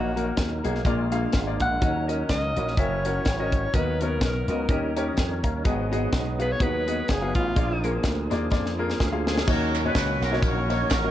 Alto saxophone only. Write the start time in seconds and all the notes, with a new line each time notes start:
Already playing: F#4
1.62 F#5
2.30 D#5
2.79 C#5
3.74 B4
4.01 A#4
6.41 B4
6.52 C#5
6.63 B4
7.10 G#4
7.36 F4